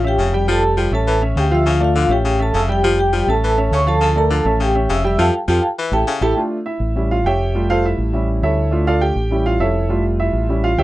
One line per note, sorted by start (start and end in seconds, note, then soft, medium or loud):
0.00 0.15 A1 medium
0.00 0.28 C#4 medium
0.04 0.47 G4 medium
0.04 0.28 C#5 medium
0.04 0.28 E5 medium
0.04 0.47 G5 loud
0.18 0.86 F1 loud
0.18 0.34 C#3 medium
0.33 0.45 G3 loud
0.33 0.45 G4 medium
0.33 0.46 G5 loud
0.48 0.63 F3 medium
0.48 0.72 G3 medium
0.48 0.72 G4 medium
0.48 0.76 A4 medium
0.48 0.72 G5 medium
0.48 0.77 A5 loud
0.77 0.93 F3 medium
0.77 0.89 G3 medium
0.77 0.90 G4 medium
0.77 0.90 G5 medium
0.91 1.33 A1 medium
0.91 1.16 C#4 medium
0.91 1.20 A4 medium
0.91 1.17 C#5 medium
0.91 1.17 E5 medium
0.91 1.21 A5 medium
1.07 1.22 E3 medium
1.22 1.46 C#4 medium
1.22 1.46 C#5 medium
1.22 1.46 E5 medium
1.36 2.04 D2 loud
1.36 1.52 C#3 medium
1.36 1.51 G4 medium
1.36 1.52 G5 medium
1.51 1.75 F3 loud
1.51 1.75 F4 loud
1.51 1.67 E5 medium
1.51 1.76 F5 medium
1.51 1.66 E6 medium
1.66 1.82 C#3 loud
1.66 1.74 F4 medium
1.66 1.75 F5 loud
1.80 1.92 A3 medium
1.80 1.96 F4 medium
1.80 1.92 A4 medium
1.80 1.93 D5 medium
1.84 1.96 F5 medium
1.95 2.11 D3 medium
1.95 2.07 F3 medium
1.95 2.07 F4 medium
1.95 2.04 F4 medium
1.95 2.07 F5 medium
1.99 2.05 F5 loud
2.08 2.50 A1 medium
2.08 2.34 C#4 medium
2.08 2.38 G4 medium
2.08 2.34 C#5 medium
2.08 2.34 E5 medium
2.13 2.42 G5 loud
2.25 2.40 C#3 medium
2.39 2.63 C#4 medium
2.39 2.47 A4 medium
2.39 2.63 C#5 medium
2.39 2.64 E5 medium
2.39 2.48 A5 loud
2.53 3.22 F1 medium
2.53 2.70 C#3 medium
2.53 2.69 E6 medium
2.57 2.69 E5 medium
2.68 2.80 G3 loud
2.68 2.81 G4 medium
2.68 2.97 G4 medium
2.68 2.81 G5 medium
2.68 2.99 G5 loud
2.83 2.99 F3 loud
2.83 3.07 G3 medium
2.83 3.08 G4 medium
2.83 3.08 G5 medium
2.99 3.26 G4 medium
2.99 3.27 G5 loud
3.13 3.28 F3 medium
3.13 3.25 G3 medium
3.13 3.25 G4 medium
3.13 3.26 G5 medium
3.27 3.68 A1 medium
3.27 3.52 C#4 medium
3.27 3.69 A4 medium
3.27 3.52 C#5 medium
3.27 3.52 E5 medium
3.27 3.70 A5 loud
3.44 3.59 E3 medium
3.57 3.81 C#4 medium
3.57 3.82 C#5 medium
3.57 3.82 E5 medium
3.71 4.40 D2 loud
3.71 3.88 C#3 medium
3.71 3.87 C#5 medium
3.71 3.88 C#6 loud
3.87 4.11 F3 loud
3.87 4.11 F4 loud
3.87 3.94 A4 medium
3.87 4.11 F5 loud
3.87 3.95 A5 loud
4.01 4.17 C#3 medium
4.01 4.09 A4 medium
4.01 4.10 A5 loud
4.16 4.28 A3 medium
4.16 4.28 A4 medium
4.16 4.24 A#4 medium
4.16 4.28 D5 medium
4.16 4.24 A#5 medium
4.30 4.46 D3 medium
4.30 4.42 F3 medium
4.30 4.43 F4 medium
4.30 4.59 A4 medium
4.30 4.43 F5 medium
4.30 4.59 A5 loud
4.45 4.86 A1 medium
4.45 4.70 C#4 medium
4.45 4.70 C#5 medium
4.45 4.70 E5 medium
4.60 4.76 C#3 medium
4.60 4.88 G4 medium
4.60 4.89 G5 loud
4.75 4.99 C#4 medium
4.75 4.99 C#5 medium
4.75 4.99 E5 medium
4.89 5.17 F1 loud
4.89 5.05 C#3 loud
4.89 4.98 E5 medium
4.89 4.97 E6 medium
5.04 5.16 G3 loud
5.04 5.16 G4 loud
5.04 5.21 E5 medium
5.04 5.17 G5 medium
5.04 5.19 E6 medium
5.18 5.29 F2 medium
5.18 5.34 F3 loud
5.18 5.28 F4 medium
5.18 5.28 G4 loud
5.18 5.28 A4 loud
5.18 5.29 F5 loud
5.18 5.29 G5 loud
5.18 5.29 A5 loud
5.48 5.59 F2 loud
5.48 5.63 F3 medium
5.48 5.58 F4 loud
5.48 5.58 G4 medium
5.48 5.58 A4 loud
5.48 5.58 F5 loud
5.48 5.58 G5 loud
5.48 5.58 A5 loud
5.79 5.94 E3 medium
5.91 6.03 A1 loud
5.91 6.02 E4 medium
5.91 6.02 G4 medium
5.91 6.02 A4 loud
5.91 6.02 E5 loud
5.91 6.02 G5 medium
5.91 6.02 A5 loud
6.07 6.23 C#3 medium
6.21 6.32 A1 loud
6.21 6.31 E4 loud
6.21 6.31 G4 loud
6.21 6.31 A4 loud
6.21 6.32 E5 medium
6.21 6.31 G5 medium
6.21 6.32 A5 medium
6.36 6.56 A3 medium
6.36 6.56 D4 soft
6.36 6.57 F4 medium
6.66 6.95 E4 medium
6.66 7.07 E5 medium
6.80 7.21 A1 medium
6.96 7.15 G3 medium
6.96 7.15 C#4 soft
6.96 7.16 E4 medium
7.11 7.25 F4 medium
7.11 7.25 F5 medium
7.24 7.93 F1 medium
7.24 7.67 G4 medium
7.24 7.53 C#5 medium
7.24 7.67 E5 medium
7.24 7.67 G5 medium
7.55 8.11 G3 medium
7.55 8.11 A3 medium
7.55 7.69 F4 medium
7.70 7.84 F4 medium
7.70 7.84 A4 medium
7.70 7.84 C5 medium
7.70 7.84 F5 loud
7.85 8.13 E4 medium
7.85 8.26 E5 medium
7.98 8.39 A1 medium
8.13 8.55 G3 medium
8.13 8.56 C#4 medium
8.13 8.42 E4 medium
8.42 9.11 D2 loud
8.42 8.84 E4 medium
8.42 8.84 A4 medium
8.42 8.84 C#5 medium
8.42 8.84 E5 medium
8.71 9.14 A3 medium
8.71 9.14 D4 medium
8.71 8.86 F4 medium
8.87 9.02 F4 medium
8.87 9.02 A4 medium
8.87 9.02 D5 medium
8.87 9.01 F5 loud
9.01 9.43 G4 medium
9.01 9.43 G5 loud
9.15 9.57 A1 medium
9.31 9.73 G3 medium
9.31 9.73 C#4 medium
9.31 9.59 E4 medium
9.46 9.60 F4 medium
9.46 9.60 F5 medium
9.59 10.28 F1 medium
9.59 10.02 E4 medium
9.59 10.02 A4 medium
9.59 9.88 C#5 medium
9.59 10.02 E5 medium
9.89 10.46 G3 medium
9.89 10.46 A3 medium
9.89 10.46 F4 medium
10.20 10.49 E4 medium
10.20 10.61 E5 medium
10.33 10.75 A1 medium
10.49 10.69 G3 medium
10.49 10.69 C#4 medium
10.49 10.69 E4 medium
10.64 10.78 F4 medium
10.64 10.78 F5 medium
10.78 10.83 D2 medium
10.78 10.83 G4 medium
10.78 10.83 C#5 medium
10.78 10.83 E5 medium
10.78 10.83 G5 medium